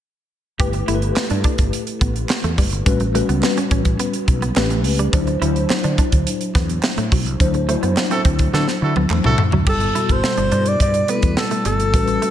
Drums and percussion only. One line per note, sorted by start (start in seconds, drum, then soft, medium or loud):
0.60 kick loud
0.60 closed hi-hat medium
0.73 closed hi-hat soft
0.88 closed hi-hat medium
1.02 closed hi-hat soft
1.16 snare loud
1.16 clap medium
1.30 closed hi-hat soft
1.44 kick medium
1.44 closed hi-hat medium
1.58 kick loud
1.58 closed hi-hat medium
1.73 closed hi-hat medium
1.87 closed hi-hat medium
2.01 kick loud
2.01 closed hi-hat medium
2.16 closed hi-hat soft
2.29 snare loud
2.29 clap medium
2.44 closed hi-hat soft
2.58 kick medium
2.58 open hi-hat medium
2.73 closed hi-hat soft
2.86 kick loud
2.86 closed hi-hat loud
3.00 closed hi-hat soft
3.15 closed hi-hat medium
3.29 closed hi-hat soft
3.43 snare loud
3.43 clap medium
3.57 closed hi-hat soft
3.71 kick medium
3.71 closed hi-hat medium
3.85 kick medium
3.85 closed hi-hat medium
3.99 closed hi-hat medium
4.13 closed hi-hat medium
4.28 kick loud
4.28 closed hi-hat medium
4.42 closed hi-hat soft
4.56 snare loud
4.56 clap medium
4.70 closed hi-hat soft
4.84 open hi-hat medium
4.99 closed hi-hat soft
5.13 kick loud
5.13 closed hi-hat medium
5.27 closed hi-hat soft
5.42 closed hi-hat medium
5.56 closed hi-hat soft
5.70 snare loud
5.70 clap medium
5.84 closed hi-hat soft
5.98 kick medium
5.98 closed hi-hat medium
6.12 kick medium
6.12 closed hi-hat medium
6.27 closed hi-hat medium
6.41 closed hi-hat soft
6.55 kick loud
6.55 snare soft
6.55 closed hi-hat medium
6.69 closed hi-hat soft
6.83 snare loud
6.83 clap medium
6.98 closed hi-hat soft
7.12 kick medium
7.12 open hi-hat medium
7.26 closed hi-hat soft
7.40 kick loud
7.40 closed hi-hat medium
7.54 closed hi-hat soft
7.69 closed hi-hat medium
7.83 closed hi-hat soft
7.97 snare loud
7.97 clap medium
8.11 closed hi-hat soft
8.25 kick medium
8.25 closed hi-hat medium
8.39 kick medium
8.39 closed hi-hat medium
8.54 snare soft
8.68 snare medium
8.96 high tom medium
9.10 clap medium
9.24 mid tom medium
9.38 floor tom loud
9.52 floor tom medium
9.66 kick loud
9.66 crash medium
9.80 closed hi-hat soft
9.95 closed hi-hat medium
10.09 kick medium
10.09 closed hi-hat soft
10.24 snare loud
10.37 closed hi-hat soft
10.52 closed hi-hat medium
10.66 closed hi-hat medium
10.80 kick medium
10.80 closed hi-hat medium
10.94 closed hi-hat soft
11.08 closed hi-hat medium
11.22 kick medium
11.22 closed hi-hat soft
11.37 snare loud
11.51 closed hi-hat soft
11.65 closed hi-hat medium
11.80 closed hi-hat soft
11.94 kick loud
11.94 closed hi-hat medium
12.07 closed hi-hat soft
12.22 closed hi-hat medium